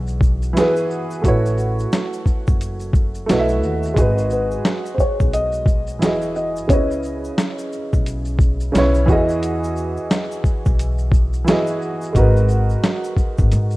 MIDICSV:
0, 0, Header, 1, 5, 480
1, 0, Start_track
1, 0, Tempo, 681818
1, 873, Time_signature, 4, 2, 24, 8
1, 9693, End_track
2, 0, Start_track
2, 0, Title_t, "Felt piano"
2, 0, Program_c, 0, 0
2, 3048, Note_on_c, 0, 71, 73
2, 3481, Note_on_c, 0, 72, 64
2, 3494, Note_off_c, 0, 71, 0
2, 3517, Note_off_c, 0, 72, 0
2, 3522, Note_on_c, 0, 73, 88
2, 3741, Note_off_c, 0, 73, 0
2, 3757, Note_on_c, 0, 75, 103
2, 4467, Note_off_c, 0, 75, 0
2, 4477, Note_on_c, 0, 75, 91
2, 4718, Note_on_c, 0, 73, 85
2, 4722, Note_off_c, 0, 75, 0
2, 5647, Note_off_c, 0, 73, 0
2, 9693, End_track
3, 0, Start_track
3, 0, Title_t, "Upright piano"
3, 0, Program_c, 1, 0
3, 0, Control_c, 1, 64, 127
3, 0, Note_on_c, 1, 52, 80
3, 0, Note_on_c, 1, 64, 83
3, 0, Note_on_c, 1, 66, 82
3, 0, Note_on_c, 1, 68, 77
3, 0, Note_on_c, 1, 74, 83
3, 374, Note_off_c, 1, 52, 0
3, 374, Note_on_c, 1, 52, 82
3, 386, Note_off_c, 1, 64, 0
3, 386, Note_on_c, 1, 64, 72
3, 398, Note_off_c, 1, 66, 0
3, 398, Note_on_c, 1, 66, 76
3, 410, Note_off_c, 1, 68, 0
3, 410, Note_on_c, 1, 68, 83
3, 420, Note_on_c, 1, 71, 97
3, 770, Note_off_c, 1, 52, 0
3, 775, Note_off_c, 1, 64, 0
3, 781, Note_off_c, 1, 66, 0
3, 787, Note_off_c, 1, 68, 0
3, 792, Note_off_c, 1, 71, 0
3, 857, Note_on_c, 1, 57, 74
3, 870, Note_on_c, 1, 64, 72
3, 880, Note_on_c, 1, 66, 76
3, 881, Control_c, 1, 64, 0
3, 883, Note_off_c, 1, 74, 0
3, 891, Note_on_c, 1, 71, 74
3, 903, Note_on_c, 1, 73, 83
3, 1022, Control_c, 1, 64, 127
3, 1592, Note_off_c, 1, 57, 0
3, 1599, Note_off_c, 1, 64, 0
3, 1604, Note_off_c, 1, 66, 0
3, 1609, Note_off_c, 1, 71, 0
3, 1615, Note_off_c, 1, 73, 0
3, 2297, Note_on_c, 1, 57, 84
3, 2308, Note_on_c, 1, 64, 70
3, 2319, Note_on_c, 1, 66, 73
3, 2330, Note_on_c, 1, 71, 73
3, 2341, Note_on_c, 1, 75, 68
3, 2382, Note_off_c, 1, 75, 0
3, 2387, Note_on_c, 1, 76, 88
3, 2691, Note_off_c, 1, 57, 0
3, 2696, Note_off_c, 1, 64, 0
3, 2702, Note_off_c, 1, 66, 0
3, 2707, Note_off_c, 1, 71, 0
3, 2736, Note_off_c, 1, 76, 0
3, 2773, Note_on_c, 1, 56, 81
3, 2782, Note_on_c, 1, 63, 73
3, 2795, Note_on_c, 1, 66, 78
3, 2802, Control_c, 1, 64, 0
3, 2806, Note_on_c, 1, 68, 74
3, 2817, Note_on_c, 1, 71, 89
3, 2921, Control_c, 1, 64, 127
3, 3510, Note_off_c, 1, 56, 0
3, 3515, Note_off_c, 1, 63, 0
3, 3521, Note_off_c, 1, 66, 0
3, 3526, Note_off_c, 1, 68, 0
3, 3532, Note_off_c, 1, 71, 0
3, 4217, Note_on_c, 1, 52, 67
3, 4228, Note_on_c, 1, 64, 64
3, 4239, Note_on_c, 1, 66, 59
3, 4241, Control_c, 1, 64, 0
3, 4252, Note_on_c, 1, 68, 60
3, 4263, Note_on_c, 1, 75, 74
3, 4349, Control_c, 1, 64, 127
3, 4611, Note_off_c, 1, 52, 0
3, 4616, Note_off_c, 1, 64, 0
3, 4622, Note_off_c, 1, 66, 0
3, 4628, Note_off_c, 1, 68, 0
3, 4634, Note_off_c, 1, 75, 0
3, 4698, Note_on_c, 1, 49, 64
3, 4709, Note_on_c, 1, 61, 69
3, 4719, Note_on_c, 1, 64, 65
3, 4723, Control_c, 1, 64, 0
3, 4732, Note_on_c, 1, 71, 61
3, 4742, Note_on_c, 1, 75, 80
3, 4833, Control_c, 1, 64, 127
3, 5433, Note_off_c, 1, 49, 0
3, 5438, Note_off_c, 1, 61, 0
3, 5443, Note_off_c, 1, 64, 0
3, 5449, Note_off_c, 1, 71, 0
3, 5455, Note_off_c, 1, 75, 0
3, 6138, Note_on_c, 1, 49, 81
3, 6148, Note_on_c, 1, 61, 80
3, 6160, Note_on_c, 1, 64, 71
3, 6170, Note_on_c, 1, 71, 70
3, 6183, Note_on_c, 1, 73, 93
3, 6375, Note_off_c, 1, 64, 0
3, 6377, Note_on_c, 1, 52, 93
3, 6385, Note_on_c, 1, 64, 72
3, 6386, Note_off_c, 1, 49, 0
3, 6391, Note_off_c, 1, 61, 0
3, 6398, Note_on_c, 1, 66, 79
3, 6402, Note_off_c, 1, 71, 0
3, 6404, Control_c, 1, 64, 0
3, 6408, Note_off_c, 1, 73, 0
3, 6408, Note_on_c, 1, 68, 84
3, 6420, Note_on_c, 1, 75, 97
3, 6537, Control_c, 1, 64, 127
3, 7163, Note_off_c, 1, 52, 0
3, 7167, Note_off_c, 1, 64, 0
3, 7173, Note_off_c, 1, 66, 0
3, 7178, Note_off_c, 1, 68, 0
3, 7184, Note_off_c, 1, 75, 0
3, 8057, Note_on_c, 1, 52, 77
3, 8069, Note_on_c, 1, 64, 73
3, 8078, Note_on_c, 1, 66, 74
3, 8088, Note_on_c, 1, 68, 77
3, 8100, Note_on_c, 1, 75, 85
3, 8451, Note_off_c, 1, 52, 0
3, 8457, Note_off_c, 1, 64, 0
3, 8461, Note_off_c, 1, 66, 0
3, 8466, Note_off_c, 1, 68, 0
3, 8472, Note_off_c, 1, 75, 0
3, 8538, Note_on_c, 1, 56, 84
3, 8550, Note_on_c, 1, 63, 73
3, 8561, Note_on_c, 1, 66, 85
3, 8563, Control_c, 1, 64, 0
3, 8571, Note_on_c, 1, 70, 82
3, 8582, Note_on_c, 1, 71, 92
3, 8679, Control_c, 1, 64, 127
3, 9273, Note_off_c, 1, 56, 0
3, 9279, Note_off_c, 1, 63, 0
3, 9284, Note_off_c, 1, 66, 0
3, 9289, Note_off_c, 1, 70, 0
3, 9294, Note_off_c, 1, 71, 0
3, 9693, End_track
4, 0, Start_track
4, 0, Title_t, "Upright bass"
4, 0, Program_c, 2, 32
4, 0, Note_on_c, 2, 35, 89
4, 371, Note_off_c, 2, 35, 0
4, 876, Note_on_c, 2, 33, 100
4, 1286, Note_off_c, 2, 33, 0
4, 1748, Note_on_c, 2, 30, 82
4, 2291, Note_off_c, 2, 30, 0
4, 2320, Note_on_c, 2, 35, 85
4, 2559, Note_off_c, 2, 35, 0
4, 2559, Note_on_c, 2, 39, 87
4, 2762, Note_off_c, 2, 39, 0
4, 2795, Note_on_c, 2, 32, 102
4, 3205, Note_off_c, 2, 32, 0
4, 3665, Note_on_c, 2, 35, 85
4, 4240, Note_off_c, 2, 35, 0
4, 4240, Note_on_c, 2, 28, 96
4, 4714, Note_off_c, 2, 28, 0
4, 4714, Note_on_c, 2, 37, 93
4, 5125, Note_off_c, 2, 37, 0
4, 5586, Note_on_c, 2, 35, 84
4, 6130, Note_off_c, 2, 35, 0
4, 6159, Note_on_c, 2, 35, 82
4, 6362, Note_off_c, 2, 35, 0
4, 6396, Note_on_c, 2, 40, 103
4, 7011, Note_off_c, 2, 40, 0
4, 7508, Note_on_c, 2, 35, 82
4, 8050, Note_off_c, 2, 35, 0
4, 8557, Note_on_c, 2, 32, 102
4, 8966, Note_off_c, 2, 32, 0
4, 9428, Note_on_c, 2, 32, 90
4, 9506, Note_off_c, 2, 32, 0
4, 9522, Note_on_c, 2, 44, 101
4, 9693, Note_off_c, 2, 44, 0
4, 9693, End_track
5, 0, Start_track
5, 0, Title_t, "Drums"
5, 50, Note_on_c, 9, 82, 49
5, 57, Note_off_c, 9, 82, 0
5, 57, Note_on_c, 9, 82, 40
5, 128, Note_off_c, 9, 82, 0
5, 147, Note_on_c, 9, 36, 108
5, 159, Note_on_c, 9, 82, 48
5, 217, Note_off_c, 9, 36, 0
5, 230, Note_off_c, 9, 82, 0
5, 298, Note_on_c, 9, 82, 51
5, 301, Note_off_c, 9, 82, 0
5, 301, Note_on_c, 9, 82, 41
5, 371, Note_off_c, 9, 82, 0
5, 400, Note_on_c, 9, 82, 79
5, 401, Note_off_c, 9, 82, 0
5, 401, Note_on_c, 9, 42, 81
5, 401, Note_on_c, 9, 82, 73
5, 404, Note_on_c, 9, 38, 95
5, 471, Note_off_c, 9, 42, 0
5, 471, Note_off_c, 9, 82, 0
5, 474, Note_off_c, 9, 38, 0
5, 537, Note_on_c, 9, 82, 49
5, 539, Note_off_c, 9, 82, 0
5, 539, Note_on_c, 9, 82, 49
5, 609, Note_off_c, 9, 82, 0
5, 639, Note_on_c, 9, 82, 47
5, 709, Note_off_c, 9, 82, 0
5, 779, Note_on_c, 9, 82, 59
5, 790, Note_off_c, 9, 82, 0
5, 790, Note_on_c, 9, 82, 58
5, 861, Note_off_c, 9, 82, 0
5, 872, Note_on_c, 9, 36, 99
5, 878, Note_on_c, 9, 42, 58
5, 878, Note_on_c, 9, 82, 68
5, 879, Note_off_c, 9, 82, 0
5, 879, Note_on_c, 9, 82, 54
5, 943, Note_off_c, 9, 36, 0
5, 948, Note_off_c, 9, 42, 0
5, 950, Note_off_c, 9, 82, 0
5, 1025, Note_on_c, 9, 82, 47
5, 1027, Note_off_c, 9, 82, 0
5, 1027, Note_on_c, 9, 82, 47
5, 1097, Note_off_c, 9, 82, 0
5, 1110, Note_on_c, 9, 82, 45
5, 1121, Note_off_c, 9, 82, 0
5, 1121, Note_on_c, 9, 82, 55
5, 1192, Note_off_c, 9, 82, 0
5, 1260, Note_on_c, 9, 82, 45
5, 1266, Note_off_c, 9, 82, 0
5, 1266, Note_on_c, 9, 82, 43
5, 1336, Note_off_c, 9, 82, 0
5, 1355, Note_on_c, 9, 82, 70
5, 1358, Note_on_c, 9, 38, 107
5, 1360, Note_off_c, 9, 82, 0
5, 1360, Note_on_c, 9, 42, 70
5, 1360, Note_on_c, 9, 82, 67
5, 1428, Note_off_c, 9, 38, 0
5, 1431, Note_off_c, 9, 42, 0
5, 1431, Note_off_c, 9, 82, 0
5, 1499, Note_on_c, 9, 82, 46
5, 1502, Note_off_c, 9, 82, 0
5, 1502, Note_on_c, 9, 82, 53
5, 1573, Note_off_c, 9, 82, 0
5, 1589, Note_on_c, 9, 36, 83
5, 1594, Note_on_c, 9, 82, 40
5, 1597, Note_off_c, 9, 82, 0
5, 1597, Note_on_c, 9, 82, 46
5, 1659, Note_off_c, 9, 36, 0
5, 1668, Note_off_c, 9, 82, 0
5, 1740, Note_on_c, 9, 82, 50
5, 1744, Note_on_c, 9, 36, 98
5, 1810, Note_off_c, 9, 82, 0
5, 1815, Note_off_c, 9, 36, 0
5, 1836, Note_on_c, 9, 42, 60
5, 1836, Note_on_c, 9, 82, 63
5, 1840, Note_off_c, 9, 82, 0
5, 1840, Note_on_c, 9, 82, 72
5, 1907, Note_off_c, 9, 42, 0
5, 1910, Note_off_c, 9, 82, 0
5, 1966, Note_on_c, 9, 82, 46
5, 1975, Note_off_c, 9, 82, 0
5, 1975, Note_on_c, 9, 82, 47
5, 2046, Note_off_c, 9, 82, 0
5, 2064, Note_on_c, 9, 36, 115
5, 2074, Note_on_c, 9, 82, 46
5, 2076, Note_off_c, 9, 82, 0
5, 2076, Note_on_c, 9, 82, 42
5, 2135, Note_off_c, 9, 36, 0
5, 2146, Note_off_c, 9, 82, 0
5, 2214, Note_on_c, 9, 82, 44
5, 2219, Note_off_c, 9, 82, 0
5, 2219, Note_on_c, 9, 82, 46
5, 2289, Note_off_c, 9, 82, 0
5, 2318, Note_on_c, 9, 82, 81
5, 2319, Note_off_c, 9, 82, 0
5, 2319, Note_on_c, 9, 42, 82
5, 2319, Note_on_c, 9, 82, 74
5, 2322, Note_on_c, 9, 38, 103
5, 2389, Note_off_c, 9, 42, 0
5, 2389, Note_off_c, 9, 82, 0
5, 2392, Note_off_c, 9, 38, 0
5, 2454, Note_on_c, 9, 82, 45
5, 2456, Note_off_c, 9, 82, 0
5, 2456, Note_on_c, 9, 82, 40
5, 2526, Note_off_c, 9, 82, 0
5, 2556, Note_on_c, 9, 82, 48
5, 2627, Note_off_c, 9, 82, 0
5, 2695, Note_on_c, 9, 82, 54
5, 2711, Note_off_c, 9, 82, 0
5, 2711, Note_on_c, 9, 82, 55
5, 2781, Note_off_c, 9, 82, 0
5, 2791, Note_on_c, 9, 36, 101
5, 2796, Note_on_c, 9, 42, 57
5, 2796, Note_on_c, 9, 82, 61
5, 2798, Note_off_c, 9, 82, 0
5, 2798, Note_on_c, 9, 82, 57
5, 2862, Note_off_c, 9, 36, 0
5, 2866, Note_off_c, 9, 42, 0
5, 2868, Note_off_c, 9, 82, 0
5, 2944, Note_on_c, 9, 82, 47
5, 3014, Note_off_c, 9, 82, 0
5, 3028, Note_on_c, 9, 82, 48
5, 3037, Note_off_c, 9, 82, 0
5, 3037, Note_on_c, 9, 82, 54
5, 3108, Note_off_c, 9, 82, 0
5, 3178, Note_on_c, 9, 82, 44
5, 3248, Note_off_c, 9, 82, 0
5, 3274, Note_on_c, 9, 38, 127
5, 3274, Note_on_c, 9, 82, 60
5, 3276, Note_off_c, 9, 82, 0
5, 3276, Note_on_c, 9, 42, 60
5, 3276, Note_on_c, 9, 82, 66
5, 3344, Note_off_c, 9, 38, 0
5, 3347, Note_off_c, 9, 42, 0
5, 3347, Note_off_c, 9, 82, 0
5, 3416, Note_on_c, 9, 82, 42
5, 3421, Note_off_c, 9, 82, 0
5, 3421, Note_on_c, 9, 82, 50
5, 3492, Note_off_c, 9, 82, 0
5, 3507, Note_on_c, 9, 36, 72
5, 3516, Note_on_c, 9, 82, 47
5, 3517, Note_off_c, 9, 82, 0
5, 3517, Note_on_c, 9, 82, 51
5, 3578, Note_off_c, 9, 36, 0
5, 3587, Note_off_c, 9, 82, 0
5, 3660, Note_on_c, 9, 82, 55
5, 3662, Note_on_c, 9, 36, 97
5, 3730, Note_off_c, 9, 82, 0
5, 3732, Note_off_c, 9, 36, 0
5, 3755, Note_on_c, 9, 42, 59
5, 3755, Note_on_c, 9, 82, 65
5, 3761, Note_off_c, 9, 82, 0
5, 3761, Note_on_c, 9, 82, 69
5, 3826, Note_off_c, 9, 42, 0
5, 3831, Note_off_c, 9, 82, 0
5, 3886, Note_on_c, 9, 82, 48
5, 3898, Note_off_c, 9, 82, 0
5, 3898, Note_on_c, 9, 82, 46
5, 3969, Note_off_c, 9, 82, 0
5, 3983, Note_on_c, 9, 36, 106
5, 3994, Note_on_c, 9, 82, 50
5, 3999, Note_off_c, 9, 82, 0
5, 3999, Note_on_c, 9, 82, 43
5, 4053, Note_off_c, 9, 36, 0
5, 4069, Note_off_c, 9, 82, 0
5, 4132, Note_on_c, 9, 82, 50
5, 4142, Note_off_c, 9, 82, 0
5, 4142, Note_on_c, 9, 82, 45
5, 4212, Note_off_c, 9, 82, 0
5, 4238, Note_on_c, 9, 42, 77
5, 4238, Note_on_c, 9, 82, 79
5, 4240, Note_off_c, 9, 82, 0
5, 4240, Note_on_c, 9, 82, 78
5, 4241, Note_on_c, 9, 38, 94
5, 4308, Note_off_c, 9, 42, 0
5, 4311, Note_off_c, 9, 38, 0
5, 4311, Note_off_c, 9, 82, 0
5, 4374, Note_on_c, 9, 82, 40
5, 4376, Note_off_c, 9, 82, 0
5, 4376, Note_on_c, 9, 82, 45
5, 4447, Note_off_c, 9, 82, 0
5, 4475, Note_on_c, 9, 82, 46
5, 4546, Note_off_c, 9, 82, 0
5, 4619, Note_on_c, 9, 82, 54
5, 4628, Note_off_c, 9, 82, 0
5, 4628, Note_on_c, 9, 82, 57
5, 4698, Note_off_c, 9, 82, 0
5, 4710, Note_on_c, 9, 36, 107
5, 4715, Note_on_c, 9, 42, 64
5, 4715, Note_on_c, 9, 82, 61
5, 4720, Note_off_c, 9, 82, 0
5, 4720, Note_on_c, 9, 82, 53
5, 4781, Note_off_c, 9, 36, 0
5, 4785, Note_off_c, 9, 42, 0
5, 4790, Note_off_c, 9, 82, 0
5, 4862, Note_on_c, 9, 82, 46
5, 4868, Note_off_c, 9, 82, 0
5, 4868, Note_on_c, 9, 82, 46
5, 4938, Note_off_c, 9, 82, 0
5, 4947, Note_on_c, 9, 82, 48
5, 4962, Note_off_c, 9, 82, 0
5, 4962, Note_on_c, 9, 82, 50
5, 5033, Note_off_c, 9, 82, 0
5, 5100, Note_on_c, 9, 82, 47
5, 5170, Note_off_c, 9, 82, 0
5, 5195, Note_on_c, 9, 38, 118
5, 5197, Note_on_c, 9, 42, 66
5, 5197, Note_on_c, 9, 82, 68
5, 5198, Note_off_c, 9, 82, 0
5, 5198, Note_on_c, 9, 82, 69
5, 5265, Note_off_c, 9, 38, 0
5, 5268, Note_off_c, 9, 42, 0
5, 5268, Note_off_c, 9, 82, 0
5, 5337, Note_on_c, 9, 82, 43
5, 5342, Note_off_c, 9, 82, 0
5, 5342, Note_on_c, 9, 82, 58
5, 5412, Note_off_c, 9, 82, 0
5, 5438, Note_on_c, 9, 82, 42
5, 5509, Note_off_c, 9, 82, 0
5, 5583, Note_on_c, 9, 36, 91
5, 5583, Note_on_c, 9, 82, 46
5, 5653, Note_off_c, 9, 36, 0
5, 5654, Note_off_c, 9, 82, 0
5, 5676, Note_on_c, 9, 42, 63
5, 5676, Note_on_c, 9, 82, 72
5, 5680, Note_off_c, 9, 82, 0
5, 5680, Note_on_c, 9, 82, 66
5, 5747, Note_off_c, 9, 42, 0
5, 5751, Note_off_c, 9, 82, 0
5, 5807, Note_on_c, 9, 82, 50
5, 5818, Note_off_c, 9, 82, 0
5, 5818, Note_on_c, 9, 82, 45
5, 5888, Note_off_c, 9, 82, 0
5, 5904, Note_on_c, 9, 36, 110
5, 5914, Note_on_c, 9, 82, 55
5, 5918, Note_off_c, 9, 82, 0
5, 5918, Note_on_c, 9, 82, 44
5, 5974, Note_off_c, 9, 36, 0
5, 5988, Note_off_c, 9, 82, 0
5, 6055, Note_on_c, 9, 82, 47
5, 6059, Note_off_c, 9, 82, 0
5, 6059, Note_on_c, 9, 82, 45
5, 6130, Note_off_c, 9, 82, 0
5, 6160, Note_on_c, 9, 42, 77
5, 6160, Note_on_c, 9, 82, 81
5, 6163, Note_on_c, 9, 38, 99
5, 6231, Note_off_c, 9, 42, 0
5, 6231, Note_off_c, 9, 82, 0
5, 6234, Note_off_c, 9, 38, 0
5, 6297, Note_on_c, 9, 82, 44
5, 6300, Note_off_c, 9, 82, 0
5, 6300, Note_on_c, 9, 82, 47
5, 6370, Note_off_c, 9, 82, 0
5, 6393, Note_on_c, 9, 36, 106
5, 6398, Note_on_c, 9, 82, 46
5, 6463, Note_off_c, 9, 36, 0
5, 6468, Note_off_c, 9, 82, 0
5, 6540, Note_on_c, 9, 82, 53
5, 6550, Note_off_c, 9, 82, 0
5, 6550, Note_on_c, 9, 82, 51
5, 6621, Note_off_c, 9, 82, 0
5, 6637, Note_on_c, 9, 42, 62
5, 6637, Note_on_c, 9, 82, 63
5, 6638, Note_off_c, 9, 82, 0
5, 6638, Note_on_c, 9, 82, 58
5, 6708, Note_off_c, 9, 42, 0
5, 6708, Note_off_c, 9, 82, 0
5, 6785, Note_on_c, 9, 82, 39
5, 6786, Note_off_c, 9, 82, 0
5, 6786, Note_on_c, 9, 82, 52
5, 6856, Note_off_c, 9, 82, 0
5, 6870, Note_on_c, 9, 82, 46
5, 6881, Note_off_c, 9, 82, 0
5, 6881, Note_on_c, 9, 82, 54
5, 6951, Note_off_c, 9, 82, 0
5, 7019, Note_on_c, 9, 82, 40
5, 7089, Note_off_c, 9, 82, 0
5, 7117, Note_on_c, 9, 38, 125
5, 7117, Note_on_c, 9, 82, 63
5, 7120, Note_off_c, 9, 82, 0
5, 7120, Note_on_c, 9, 42, 65
5, 7120, Note_on_c, 9, 82, 67
5, 7187, Note_off_c, 9, 38, 0
5, 7190, Note_off_c, 9, 42, 0
5, 7190, Note_off_c, 9, 82, 0
5, 7259, Note_on_c, 9, 82, 42
5, 7263, Note_off_c, 9, 82, 0
5, 7263, Note_on_c, 9, 82, 58
5, 7334, Note_off_c, 9, 82, 0
5, 7350, Note_on_c, 9, 36, 88
5, 7356, Note_on_c, 9, 82, 43
5, 7360, Note_off_c, 9, 82, 0
5, 7360, Note_on_c, 9, 82, 49
5, 7420, Note_off_c, 9, 36, 0
5, 7431, Note_off_c, 9, 82, 0
5, 7502, Note_on_c, 9, 82, 49
5, 7505, Note_on_c, 9, 36, 92
5, 7573, Note_off_c, 9, 82, 0
5, 7575, Note_off_c, 9, 36, 0
5, 7599, Note_on_c, 9, 42, 67
5, 7599, Note_on_c, 9, 82, 67
5, 7602, Note_off_c, 9, 82, 0
5, 7602, Note_on_c, 9, 82, 73
5, 7669, Note_off_c, 9, 42, 0
5, 7672, Note_off_c, 9, 82, 0
5, 7730, Note_on_c, 9, 82, 48
5, 7736, Note_off_c, 9, 82, 0
5, 7736, Note_on_c, 9, 82, 42
5, 7807, Note_off_c, 9, 82, 0
5, 7826, Note_on_c, 9, 36, 112
5, 7838, Note_on_c, 9, 82, 49
5, 7839, Note_off_c, 9, 82, 0
5, 7839, Note_on_c, 9, 82, 46
5, 7896, Note_off_c, 9, 36, 0
5, 7909, Note_off_c, 9, 82, 0
5, 7978, Note_on_c, 9, 82, 44
5, 7980, Note_off_c, 9, 82, 0
5, 7980, Note_on_c, 9, 82, 40
5, 8050, Note_off_c, 9, 82, 0
5, 8078, Note_on_c, 9, 82, 72
5, 8081, Note_off_c, 9, 82, 0
5, 8081, Note_on_c, 9, 42, 81
5, 8081, Note_on_c, 9, 82, 72
5, 8084, Note_on_c, 9, 38, 111
5, 8152, Note_off_c, 9, 42, 0
5, 8152, Note_off_c, 9, 82, 0
5, 8155, Note_off_c, 9, 38, 0
5, 8214, Note_on_c, 9, 82, 49
5, 8220, Note_off_c, 9, 82, 0
5, 8220, Note_on_c, 9, 82, 48
5, 8290, Note_off_c, 9, 82, 0
5, 8320, Note_on_c, 9, 82, 48
5, 8390, Note_off_c, 9, 82, 0
5, 8459, Note_on_c, 9, 82, 58
5, 8471, Note_off_c, 9, 82, 0
5, 8471, Note_on_c, 9, 82, 57
5, 8541, Note_off_c, 9, 82, 0
5, 8553, Note_on_c, 9, 36, 101
5, 8558, Note_on_c, 9, 82, 56
5, 8559, Note_off_c, 9, 82, 0
5, 8559, Note_on_c, 9, 42, 56
5, 8559, Note_on_c, 9, 82, 58
5, 8623, Note_off_c, 9, 36, 0
5, 8629, Note_off_c, 9, 42, 0
5, 8629, Note_off_c, 9, 82, 0
5, 8705, Note_on_c, 9, 82, 43
5, 8706, Note_off_c, 9, 82, 0
5, 8706, Note_on_c, 9, 82, 43
5, 8776, Note_off_c, 9, 82, 0
5, 8790, Note_on_c, 9, 82, 47
5, 8801, Note_off_c, 9, 82, 0
5, 8801, Note_on_c, 9, 82, 55
5, 8872, Note_off_c, 9, 82, 0
5, 8939, Note_on_c, 9, 82, 43
5, 8945, Note_off_c, 9, 82, 0
5, 8945, Note_on_c, 9, 82, 40
5, 9015, Note_off_c, 9, 82, 0
5, 9036, Note_on_c, 9, 82, 61
5, 9037, Note_on_c, 9, 38, 115
5, 9040, Note_off_c, 9, 82, 0
5, 9040, Note_on_c, 9, 42, 60
5, 9040, Note_on_c, 9, 82, 64
5, 9107, Note_off_c, 9, 38, 0
5, 9110, Note_off_c, 9, 42, 0
5, 9110, Note_off_c, 9, 82, 0
5, 9178, Note_on_c, 9, 82, 41
5, 9181, Note_off_c, 9, 82, 0
5, 9181, Note_on_c, 9, 82, 55
5, 9251, Note_off_c, 9, 82, 0
5, 9268, Note_on_c, 9, 36, 80
5, 9276, Note_on_c, 9, 82, 43
5, 9277, Note_off_c, 9, 82, 0
5, 9277, Note_on_c, 9, 82, 38
5, 9339, Note_off_c, 9, 36, 0
5, 9347, Note_off_c, 9, 82, 0
5, 9419, Note_on_c, 9, 82, 52
5, 9423, Note_on_c, 9, 36, 97
5, 9489, Note_off_c, 9, 82, 0
5, 9494, Note_off_c, 9, 36, 0
5, 9515, Note_on_c, 9, 42, 63
5, 9515, Note_on_c, 9, 82, 64
5, 9519, Note_off_c, 9, 82, 0
5, 9519, Note_on_c, 9, 82, 63
5, 9586, Note_off_c, 9, 42, 0
5, 9589, Note_off_c, 9, 82, 0
5, 9647, Note_on_c, 9, 82, 46
5, 9655, Note_off_c, 9, 82, 0
5, 9655, Note_on_c, 9, 82, 43
5, 9693, Note_off_c, 9, 82, 0
5, 9693, End_track
0, 0, End_of_file